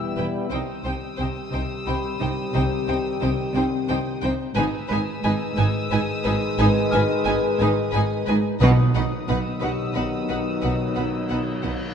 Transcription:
Already playing: trombone section E3 G3, french horn section B3 E4, violin section E6, celesta E6
0.16 double bass section E1, cello section E2, viola section E4, violin section B4 G5
0.50 double bass section C2, cello section C3, trombone section D#3 G3, french horn section C4 G4, viola section D#4, violin section C5 G5 D#6 E6
0.83 double bass section C2, cello section C3 C4, viola section D#4, violin section C5 G5
1.17 double bass section C2, cello section C3, violin section C5 G5
1.21 viola section D#4
1.52 double bass section C2, cello section C3, viola section D#4, violin section C5 G5
1.86 double bass section C2, cello section C3, viola section D#4, celesta G4 B5, violin section C5 G5
2.20 double bass section C2, cello section C3, viola section D#4, violin section C5 G5
2.54 double bass section C2, cello section C3, viola section D#4, violin section C5 G5
2.87 double bass section C2, cello section C3 C4, viola section D#4, violin section C5 G5
3.21 double bass section C2, cello section C3, viola section D#4, violin section C5 G5
3.54 double bass section C2, cello section C3, celesta C4, viola section D#4, violin section C5 G5
3.88 double bass section C2, cello section C3, viola section D#4, violin section C5 G5
4.22 double bass section C2, cello section C3, viola section D#4, violin section C5 G5
4.55 double bass section G#1, cello section G#2, trombone section D#3 G#3, french horn section D#4 B4, viola section D#4, violin section B4 G#5 D#6 E6
4.88 double bass section G#1, cello section G#2 G#3, viola section D#4, violin section B4 G#5
5.23 double bass section G#1, cello section G#2, viola section D#4, violin section B4 G#5
5.56 double bass section G#1, cello section G#2, viola section D#4, violin section B4 G#5
5.90 double bass section G#1, cello section G#2, viola section D#4, violin section B4 G#5
6.24 double bass section G#1, cello section G#2, viola section D#4, violin section B4 G#5
6.58 double bass section G#1, cello section G#2, viola section D#4, violin section B4 G#5
6.91 double bass section G#1, cello section G#2 G#3, viola section D#4, celesta G#4 F6, violin section B4 G#5
7.25 double bass section G#1, cello section G#2, viola section D#4, violin section B4 G#5
7.59 double bass section G#1, cello section G#2, viola section D#4, violin section B4 G#5
7.92 double bass section G#1, cello section G#2, viola section D#4, violin section B4 G#5
8.26 double bass section G#1, cello section G#2, viola section D#4, violin section B4 G#5
8.59 double bass section B1, timpani B2, cello section B2, trombone section D#3 F#3, french horn section B3 D#4, viola section D#4, violin section B4 F#5 D#6, celesta D#6
8.94 double bass section B1, cello section B2 B3, viola section D#4, violin section B4 F#5
9.28 double bass section B1, cello section B2, viola section D#4, violin section B4 F#5 E6
9.60 double bass section B1, cello section B2, viola section D#4, celesta G4, violin section B4 F#5
9.94 double bass section B1, cello section B2, viola section D#4, violin section B4 F#5
10.29 double bass section B1, cello section B2, viola section D#4, violin section B4 F#5
10.61 double bass section B1, cello section B2, viola section D#4, violin section B4 F#5
10.95 double bass section B1, cello section B2 B3, viola section D#4, violin section B4 F#5
11.28 double bass section B1, cello section B2, viola section D#4, violin section B4 F#5
11.63 double bass section B1, cello section B2, viola section D#4, violin section B4 F#5

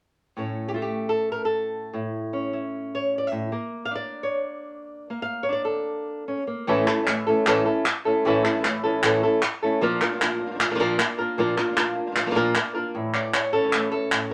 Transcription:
0.37 nylon-string guitar A2 A3 C#4 C#5
0.68 nylon-string guitar G4
0.74 nylon-string guitar A3 F4
0.82 nylon-string guitar G4
1.09 nylon-string guitar A4
1.32 nylon-string guitar A#4
1.45 nylon-string guitar A4
1.93 nylon-string guitar A2 E4
2.33 nylon-string guitar C#4
2.53 nylon-string guitar E4
2.95 nylon-string guitar C#5
3.18 nylon-string guitar D5
3.27 nylon-string guitar E5
3.32 nylon-string guitar A2
3.52 nylon-string guitar A#3 A#4
3.85 nylon-string guitar F5
3.91 nylon-string guitar D4
3.95 nylon-string guitar D5
4.23 nylon-string guitar C#5
5.10 nylon-string guitar A#3 F5
5.22 nylon-string guitar F5
5.43 nylon-string guitar C#5
5.49 nylon-string guitar D4 D5
5.65 nylon-string guitar A4
6.28 nylon-string guitar C#4
6.47 nylon-string guitar A#3
6.67 nylon-string guitar A2 E3 A3 C#4 E4 A4, muted nylon-string guitar stroke
6.87 nylon-string guitar A3 C#4 E4 A4, clap
6.98 nylon-string guitar E3 A3 C#4 E4
7.03 nylon-string guitar E3 A3 C#4 E4
7.07 nylon-string guitar A2 E3 A3 C#4 E4, muted nylon-string guitar stroke, clap
7.27 nylon-string guitar A2 E3 A3 C#4 E4 A4
7.46 nylon-string guitar A2 E3 A3 C#4 E4 A4, clap
7.65 nylon-string guitar A3 C#4 E4 A4
7.85 muted nylon-string guitar stroke, clap
8.05 nylon-string guitar A3 C#4 E4 A4
8.25 nylon-string guitar A2 E3 A3 C#4 E4 A4, muted nylon-string guitar stroke
8.44 nylon-string guitar A3 C#4 E4 A4, clap
8.51 nylon-string guitar E3 A3 C#4 E4
8.55 nylon-string guitar E3 A3 C#4 E4
8.59 nylon-string guitar E3 A3 C#4 E4
8.64 nylon-string guitar A2 E3 A3 C#4 E4, muted nylon-string guitar stroke, clap
8.84 nylon-string guitar A2 E3 A3 C#4 E4 A4
9.03 nylon-string guitar A2 E3 A3 C#4 E4 A4, clap
9.23 nylon-string guitar A3 C#4 E4 A4
9.42 muted nylon-string guitar stroke, clap
9.62 nylon-string guitar A3 C#4 E4 A4
9.81 nylon-string guitar A#2 F3 A#3 D4 F4 A#4, muted nylon-string guitar stroke
10.01 nylon-string guitar A#3 D4 F4 A#4, clap
10.07 nylon-string guitar F3 A#3 D4 F4
10.11 nylon-string guitar F3 A#3 D4 F4
10.16 nylon-string guitar F3 A#3 D4 F4
10.20 nylon-string guitar A#2 F3 A#3 D4 F4 A#4, clap
10.40 nylon-string guitar A#3 D4 F4
10.46 nylon-string guitar F3 A#3 D4 F4
10.50 nylon-string guitar F3 A#3 D4 F4
10.55 nylon-string guitar F3 A#3 D4 F4
10.59 nylon-string guitar A#2 F3 A#3 D4 F4, muted nylon-string guitar stroke, clap
10.71 nylon-string guitar F3 A#3 D4 F4 A#4
10.75 nylon-string guitar F3 A#3 D4 F4 A#4
10.79 nylon-string guitar A#2 F3 A#3 D4 F4 A#4
10.99 nylon-string guitar A#3 D4 F4 A#4, muted nylon-string guitar stroke, clap
11.18 nylon-string guitar A#3 D4 F4 A#4
11.38 nylon-string guitar A#2 F3 A#3 D4 F4 A#4, muted nylon-string guitar stroke
11.57 nylon-string guitar A#3 D4 F4 A#4, clap
11.67 nylon-string guitar F3 A#3 D4 F4
11.72 nylon-string guitar F3 A#3 D4 F4
11.76 nylon-string guitar A#2 F3 A#3 D4 F4 A#4, clap
11.96 nylon-string guitar A#3 D4 F4
12.07 nylon-string guitar F3 A#3 D4 F4
12.11 nylon-string guitar F3 A#3 D4 F4
12.15 nylon-string guitar A#2 F3 A#3 D4 F4, muted nylon-string guitar stroke, clap
12.26 nylon-string guitar F3 A#3 D4 F4 A#4
12.31 nylon-string guitar F3 A#3 D4 F4 A#4
12.35 nylon-string guitar A#2 F3 A#3 D4 F4 A#4
12.55 nylon-string guitar A#3 D4 F4 A#4, muted nylon-string guitar stroke, clap
12.75 nylon-string guitar A#3 D4 F4 A#4
12.94 nylon-string guitar A2 E3 A3 C#4 E4
13.14 nylon-string guitar A3 C#4 E4 D5, clap
13.34 nylon-string guitar C#5, muted nylon-string guitar stroke, clap
13.53 nylon-string guitar A3 C#4 E4 A4
13.63 nylon-string guitar E3 A3 C#4 E4
13.68 nylon-string guitar E3 A3 C#4 E4
13.72 nylon-string guitar A2 E3 A3 C#4 E4, clap
13.92 nylon-string guitar A3 C#4 E4 A4
14.12 nylon-string guitar A2, muted nylon-string guitar stroke, clap

